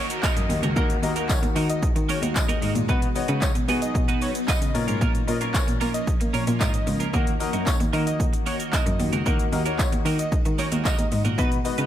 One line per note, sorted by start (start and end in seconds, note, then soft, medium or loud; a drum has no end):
0.00 2.85 D#3 medium
0.00 0.11 A#3 medium
0.00 0.75 A#3 medium
0.00 0.12 D#4 medium
0.00 0.12 F#4 medium
0.00 2.85 F#4 medium
0.00 0.12 A#4 medium
0.00 downlifter medium
0.10 0.22 A#3 medium
0.10 0.22 D#4 medium
0.10 0.23 F#4 medium
0.10 0.23 A#4 medium
0.10 closed hi-hat medium
0.10 shaker medium
0.23 0.44 A#3 medium
0.23 0.36 D#4 medium
0.23 0.36 F#4 medium
0.23 0.35 A#4 loud
0.23 0.61 D#5 medium
0.23 kick loud
0.23 clap loud
0.23 tambourine medium
0.23 shaker medium
0.37 0.46 F#2 medium
0.37 muted clean electric guitar stroke soft
0.37 closed hi-hat medium
0.37 shaker medium
0.50 0.59 D#2 loud
0.50 muted clean electric guitar stroke soft
0.50 open hi-hat medium
0.50 shaker medium
0.63 0.72 C#2 loud
0.63 0.75 A#3 medium
0.63 0.75 D#4 medium
0.63 0.76 F#4 medium
0.63 0.76 A#4 medium
0.63 closed hi-hat medium
0.63 shaker medium
0.76 0.95 D#2 loud
0.76 2.87 G#3 medium
0.76 0.97 A#3 loud
0.76 0.93 A#3 loud
0.76 0.89 D#4 loud
0.76 0.94 D#4 medium
0.76 0.89 F#4 loud
0.76 0.94 F#4 medium
0.76 0.94 A#4 loud
0.76 0.88 A#4 loud
0.76 kick loud
0.76 shaker medium
0.89 muted clean electric guitar stroke medium
0.89 closed hi-hat soft
0.89 shaker medium
1.03 1.21 D#2 medium
1.03 1.12 A#3 medium
1.03 1.12 D#4 medium
1.03 1.12 F#4 medium
1.03 1.12 A#4 medium
1.03 1.12 D#5 medium
1.03 muted clean electric guitar stroke soft
1.03 open hi-hat medium
1.03 shaker medium
1.16 1.84 A#3 medium
1.16 1.28 A#3 medium
1.16 1.84 D#4 medium
1.16 1.28 D#4 medium
1.16 1.29 F#4 medium
1.16 1.84 F#4 medium
1.16 1.29 A#4 medium
1.16 1.84 A#4 medium
1.16 closed hi-hat medium
1.16 shaker medium
1.29 1.39 C#5 medium
1.29 kick loud
1.29 clap loud
1.29 tambourine loud
1.29 shaker medium
1.43 1.52 D#2 loud
1.43 muted clean electric guitar stroke soft
1.43 closed hi-hat soft
1.43 shaker medium
1.56 1.74 D#3 loud
1.56 1.77 A#3 medium
1.56 1.69 D#4 medium
1.56 1.68 F#4 medium
1.56 1.68 A#4 medium
1.56 open hi-hat medium
1.56 shaker medium
1.69 1.88 D#5 medium
1.69 muted clean electric guitar stroke soft
1.69 closed hi-hat medium
1.69 shaker medium
1.82 1.92 D#3 soft
1.82 muted clean electric guitar stroke soft
1.82 kick loud
1.82 shaker medium
1.96 2.05 D#3 loud
1.96 muted clean electric guitar stroke soft
1.96 closed hi-hat medium
1.96 shaker medium
2.09 2.22 A#3 loud
2.09 2.22 D#4 loud
2.09 2.21 F#4 loud
2.09 2.21 A#4 loud
2.09 2.19 C#5 medium
2.09 open hi-hat medium
2.09 shaker medium
2.22 2.31 D#2 medium
2.22 2.34 A#3 medium
2.22 2.35 D#4 medium
2.22 2.35 F#4 medium
2.22 2.35 A#4 medium
2.22 closed hi-hat medium
2.22 shaker medium
2.35 2.73 D#5 medium
2.35 muted clean electric guitar stroke medium
2.35 kick loud
2.35 clap loud
2.35 tambourine loud
2.35 shaker medium
2.49 2.58 D#2 medium
2.49 2.60 A#3 medium
2.49 2.61 D#4 medium
2.49 2.61 F#4 medium
2.49 2.62 A#4 medium
2.49 closed hi-hat medium
2.49 shaker medium
2.62 2.71 G#2 loud
2.62 2.79 A#3 medium
2.62 2.75 D#4 medium
2.62 2.74 F#4 medium
2.62 2.74 A#4 medium
2.62 open hi-hat medium
2.62 shaker medium
2.75 2.85 A#2 medium
2.75 muted clean electric guitar stroke soft
2.75 closed hi-hat medium
2.75 shaker medium
2.88 3.16 B2 loud
2.88 4.73 F#3 medium
2.88 3.10 B3 medium
2.88 3.06 B3 medium
2.88 4.73 B3 medium
2.88 3.01 D#4 medium
2.88 3.06 D#4 medium
2.88 4.73 D#4 medium
2.88 3.06 F#4 medium
2.88 3.01 F#4 medium
2.88 3.06 B4 loud
2.88 3.01 B4 loud
2.88 kick loud
2.88 shaker medium
3.02 muted clean electric guitar stroke medium
3.02 closed hi-hat soft
3.02 shaker soft
3.15 3.49 B3 medium
3.15 3.49 D#4 medium
3.15 3.49 F#4 medium
3.15 3.50 C#5 medium
3.15 3.25 D#5 medium
3.15 muted clean electric guitar stroke soft
3.15 open hi-hat medium
3.15 shaker medium
3.28 3.38 C#3 medium
3.28 3.41 B3 medium
3.28 3.41 D#4 medium
3.28 3.41 F#4 medium
3.28 3.42 B4 medium
3.28 closed hi-hat medium
3.28 shaker medium
3.42 3.51 C#5 medium
3.42 kick loud
3.42 clap loud
3.42 tambourine medium
3.42 shaker medium
3.55 3.64 B2 loud
3.55 muted clean electric guitar stroke medium
3.55 closed hi-hat soft
3.55 shaker medium
3.68 4.36 B3 medium
3.68 3.86 B3 loud
3.68 3.90 B3 medium
3.68 4.36 D#4 medium
3.68 3.81 D#4 medium
3.68 4.36 F#4 medium
3.68 3.81 F#4 medium
3.68 4.36 G#4 medium
3.68 3.81 B4 medium
3.68 open hi-hat medium
3.68 shaker medium
3.82 4.00 D#5 medium
3.82 muted clean electric guitar stroke soft
3.82 closed hi-hat medium
3.82 shaker medium
3.95 4.13 B2 loud
3.95 muted clean electric guitar stroke soft
3.95 kick loud
3.95 shaker medium
4.08 4.20 B3 medium
4.08 4.20 D#4 medium
4.08 4.21 F#4 medium
4.08 4.21 B4 medium
4.08 closed hi-hat medium
4.08 shaker medium
4.21 4.38 B3 medium
4.21 4.34 D#4 medium
4.21 4.34 F#4 medium
4.21 4.33 B4 medium
4.21 4.31 C#5 medium
4.21 open hi-hat medium
4.21 shaker medium
4.35 muted clean electric guitar stroke soft
4.35 closed hi-hat medium
4.35 shaker medium
4.48 4.69 B3 medium
4.48 4.61 D#4 medium
4.48 4.61 F#4 medium
4.48 4.60 B4 medium
4.48 4.86 D#5 medium
4.48 kick loud
4.48 clap loud
4.48 tambourine medium
4.48 shaker medium
4.61 4.70 C#3 medium
4.61 muted clean electric guitar stroke soft
4.61 closed hi-hat medium
4.61 shaker medium
4.74 4.84 A#2 loud
4.74 7.11 F3 medium
4.74 5.17 A#3 medium
4.74 9.22 A#3 medium
4.74 7.11 C#4 medium
4.74 5.17 C#4 medium
4.74 5.17 F4 medium
4.74 5.17 A#4 medium
4.74 muted clean electric guitar stroke soft
4.74 open hi-hat medium
4.74 shaker medium
4.88 4.97 G#2 medium
4.88 5.00 A#3 medium
4.88 5.00 C#4 medium
4.88 5.01 F4 medium
4.88 5.01 A#4 medium
4.88 closed hi-hat medium
4.88 shaker medium
5.01 5.19 A#2 loud
5.01 5.22 A#3 medium
5.01 5.14 C#4 medium
5.01 5.14 F4 loud
5.01 5.13 A#4 loud
5.01 kick loud
5.01 shaker medium
5.14 muted clean electric guitar stroke medium
5.14 closed hi-hat soft
5.14 shaker soft
5.27 5.46 A#2 loud
5.27 5.36 A#3 medium
5.27 5.36 C#4 medium
5.27 5.36 F4 medium
5.27 5.36 A#4 medium
5.27 5.37 D#5 medium
5.27 muted clean electric guitar stroke soft
5.27 open hi-hat medium
5.27 shaker medium
5.41 6.09 A#3 medium
5.41 5.53 A#3 medium
5.41 6.09 C#4 medium
5.41 5.53 C#4 medium
5.41 6.09 F4 medium
5.41 5.54 F4 medium
5.41 5.54 A#4 medium
5.41 6.09 A#4 medium
5.41 closed hi-hat medium
5.41 shaker medium
5.54 5.63 C#5 medium
5.54 kick loud
5.54 clap loud
5.54 tambourine medium
5.54 shaker medium
5.67 5.77 A#2 medium
5.67 muted clean electric guitar stroke soft
5.67 closed hi-hat soft
5.67 shaker medium
5.80 6.02 A#3 medium
5.80 5.99 A#3 loud
5.80 5.93 C#4 loud
5.80 5.93 F4 medium
5.80 5.93 A#4 loud
5.80 open hi-hat medium
5.80 shaker medium
5.94 6.12 D#5 medium
5.94 muted clean electric guitar stroke soft
5.94 closed hi-hat medium
5.94 shaker medium
6.07 muted clean electric guitar stroke soft
6.07 kick loud
6.07 shaker medium
6.20 6.30 A#3 medium
6.20 muted clean electric guitar stroke medium
6.20 closed hi-hat medium
6.20 shaker medium
6.33 6.43 A#2 loud
6.33 6.47 A#3 loud
6.33 6.46 C#4 loud
6.33 6.46 F4 loud
6.33 6.46 A#4 loud
6.33 6.43 C#5 medium
6.33 open hi-hat medium
6.33 shaker medium
6.47 6.56 A#2 loud
6.47 6.59 A#3 medium
6.47 6.60 F4 medium
6.47 6.60 A#4 medium
6.47 closed hi-hat medium
6.47 shaker medium
6.60 6.70 G#2 loud
6.60 6.81 A#3 medium
6.60 6.73 C#4 medium
6.60 6.73 F4 loud
6.60 6.72 A#4 medium
6.60 6.98 D#5 medium
6.60 kick loud
6.60 clap loud
6.60 tambourine medium
6.60 shaker medium
6.73 muted clean electric guitar stroke soft
6.73 closed hi-hat medium
6.73 shaker medium
6.87 7.05 C#2 loud
6.87 muted clean electric guitar stroke soft
6.87 open hi-hat medium
6.87 shaker medium
7.00 7.12 A#3 soft
7.00 7.13 C#4 medium
7.00 7.14 F4 medium
7.00 7.13 A#4 medium
7.00 closed hi-hat medium
7.00 shaker medium
7.13 7.41 D#2 loud
7.13 11.35 D#3 medium
7.13 7.35 A#3 medium
7.13 7.30 A#3 loud
7.13 7.31 D#4 medium
7.13 7.26 D#4 medium
7.13 7.31 F#4 medium
7.13 7.26 F#4 medium
7.13 11.35 F#4 medium
7.13 7.31 A#4 loud
7.13 7.25 A#4 medium
7.13 kick loud
7.13 shaker medium
7.27 muted clean electric guitar stroke soft
7.27 closed hi-hat soft
7.27 shaker medium
7.40 7.74 A#3 medium
7.40 7.74 D#4 medium
7.40 7.74 F#4 medium
7.40 7.74 A#4 medium
7.40 7.49 D#5 medium
7.40 muted clean electric guitar stroke soft
7.40 open hi-hat medium
7.40 shaker medium
7.53 7.63 F#2 medium
7.53 7.65 A#3 medium
7.53 7.66 D#4 medium
7.53 7.66 F#4 medium
7.53 7.66 A#4 medium
7.53 closed hi-hat medium
7.53 shaker medium
7.67 7.76 C#5 medium
7.67 kick loud
7.67 clap loud
7.67 tambourine medium
7.67 shaker medium
7.80 7.89 D#2 loud
7.80 muted clean electric guitar stroke soft
7.80 closed hi-hat soft
7.80 shaker medium
7.93 8.11 D#3 loud
7.93 8.14 A#3 medium
7.93 8.61 A#3 medium
7.93 8.61 D#4 medium
7.93 8.06 D#4 medium
7.93 8.61 F#4 medium
7.93 8.06 F#4 medium
7.93 8.61 A#4 medium
7.93 8.05 A#4 loud
7.93 open hi-hat medium
7.93 shaker medium
8.07 8.25 D#5 medium
8.07 closed hi-hat medium
8.07 shaker medium
8.20 8.38 D#2 loud
8.20 muted clean electric guitar stroke soft
8.20 kick loud
8.20 shaker medium
8.33 muted clean electric guitar stroke soft
8.33 closed hi-hat medium
8.33 shaker medium
8.46 8.59 A#3 medium
8.46 8.59 D#4 medium
8.46 8.58 F#4 loud
8.46 8.58 A#4 medium
8.46 8.56 C#5 medium
8.46 open hi-hat medium
8.46 shaker medium
8.59 8.71 A#3 medium
8.59 8.72 D#4 medium
8.59 8.72 F#4 medium
8.59 8.73 A#4 medium
8.59 closed hi-hat medium
8.59 shaker medium
8.73 8.94 A#3 medium
8.73 8.86 D#4 medium
8.73 8.85 F#4 medium
8.73 8.85 A#4 medium
8.73 9.11 D#5 medium
8.73 kick loud
8.73 clap loud
8.73 tambourine medium
8.73 shaker medium
8.86 8.95 F#2 loud
8.86 muted clean electric guitar stroke soft
8.86 closed hi-hat medium
8.86 shaker medium
8.99 9.09 D#2 loud
8.99 muted clean electric guitar stroke soft
8.99 open hi-hat medium
8.99 shaker medium
9.12 9.22 C#2 medium
9.12 9.24 A#3 soft
9.12 9.25 D#4 medium
9.12 9.25 F#4 medium
9.12 9.26 A#4 medium
9.12 closed hi-hat medium
9.12 shaker medium
9.26 9.44 D#2 loud
9.26 11.37 G#3 medium
9.26 9.47 A#3 medium
9.26 9.43 A#3 loud
9.26 9.43 D#4 medium
9.26 9.39 D#4 loud
9.26 9.43 F#4 medium
9.26 9.38 F#4 loud
9.26 9.43 A#4 loud
9.26 9.38 A#4 loud
9.26 kick loud
9.26 shaker medium
9.39 muted clean electric guitar stroke medium
9.39 closed hi-hat soft
9.39 shaker soft
9.52 9.71 D#2 loud
9.52 9.61 A#3 medium
9.52 9.61 D#4 medium
9.52 9.61 F#4 medium
9.52 9.61 A#4 medium
9.52 9.62 D#5 medium
9.52 muted clean electric guitar stroke medium
9.52 open hi-hat medium
9.52 shaker medium
9.65 10.33 A#3 medium
9.65 9.78 A#3 medium
9.65 10.34 D#4 medium
9.65 9.78 D#4 medium
9.65 9.78 F#4 medium
9.65 10.34 F#4 medium
9.65 9.79 A#4 medium
9.65 10.34 C#5 medium
9.65 closed hi-hat medium
9.65 shaker medium
9.79 9.88 C#5 medium
9.79 kick loud
9.79 clap loud
9.79 tambourine medium
9.79 shaker medium
9.92 10.01 D#2 medium
9.92 muted clean electric guitar stroke medium
9.92 closed hi-hat medium
9.92 shaker medium
10.06 10.24 D#3 loud
10.06 10.27 A#3 medium
10.06 10.19 D#4 loud
10.06 10.18 F#4 loud
10.06 10.18 A#4 loud
10.06 open hi-hat medium
10.06 shaker medium
10.19 10.37 D#5 medium
10.19 muted clean electric guitar stroke soft
10.19 closed hi-hat medium
10.19 shaker medium
10.32 10.42 D#3 medium
10.32 muted clean electric guitar stroke soft
10.32 kick loud
10.32 shaker medium
10.45 10.55 D#3 loud
10.45 muted clean electric guitar stroke medium
10.45 closed hi-hat medium
10.45 shaker medium
10.58 10.72 A#3 medium
10.58 10.71 D#4 medium
10.58 10.71 F#4 medium
10.58 10.70 A#4 loud
10.58 10.68 C#5 medium
10.58 open hi-hat medium
10.58 shaker medium
10.72 10.81 D#2 medium
10.72 10.84 A#3 medium
10.72 10.84 D#4 medium
10.72 10.85 F#4 medium
10.72 10.85 A#4 medium
10.72 closed hi-hat medium
10.72 shaker medium
10.85 11.06 A#3 medium
10.85 10.98 D#4 medium
10.85 10.98 F#4 medium
10.85 10.97 A#4 loud
10.85 11.23 D#5 medium
10.85 kick loud
10.85 clap loud
10.85 tambourine medium
10.85 shaker medium
10.98 11.08 D#2 medium
10.98 muted clean electric guitar stroke soft
10.98 closed hi-hat medium
10.98 shaker medium
11.12 11.21 G#2 loud
11.12 muted clean electric guitar stroke medium
11.12 open hi-hat medium
11.12 shaker medium
11.25 11.34 A#2 medium
11.25 11.38 A#3 medium
11.25 11.37 D#4 medium
11.25 11.38 F#4 medium
11.25 11.39 A#4 medium
11.25 closed hi-hat medium
11.25 shaker medium
11.38 11.65 B2 loud
11.38 11.86 F#3 medium
11.38 11.59 B3 medium
11.38 11.55 B3 loud
11.38 11.86 B3 medium
11.38 11.86 D#4 medium
11.38 11.55 D#4 medium
11.38 11.51 D#4 loud
11.38 11.55 F#4 medium
11.38 11.51 F#4 loud
11.38 11.55 B4 loud
11.38 11.50 B4 loud
11.38 kick loud
11.38 shaker medium
11.51 muted clean electric guitar stroke soft
11.51 closed hi-hat soft
11.51 shaker soft
11.64 11.86 B3 medium
11.64 11.86 D#4 medium
11.64 11.86 F#4 medium
11.64 11.86 B4 medium
11.64 11.74 D#5 medium
11.64 muted clean electric guitar stroke soft
11.64 open hi-hat medium
11.64 shaker medium
11.78 11.86 C#3 medium
11.78 11.86 B3 medium
11.78 11.86 D#4 medium
11.78 11.86 F#4 medium
11.78 11.86 B4 medium
11.78 closed hi-hat medium
11.78 shaker medium